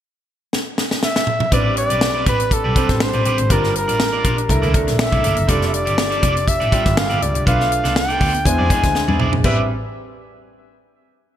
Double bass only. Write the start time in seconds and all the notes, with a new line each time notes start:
1.52 A1
1.90 B1
2.26 A1
2.64 B1
2.89 A1
3.14 A1
3.25 A1
3.39 G#1
3.50 G1
3.88 A1
4.25 A#1
4.49 C2
4.63 D2
4.88 A#1
5.12 C2
5.24 G1
5.37 F#1
5.48 F1
5.87 G1
6.23 F1
6.61 A1
6.86 G1
7.10 G1
7.22 C#2
7.35 C2
7.47 B1
7.84 C2
8.21 D2
8.45 E2
8.59 F2
8.84 D2
9.08 E2
9.19 B1
9.33 A#1
9.44 A1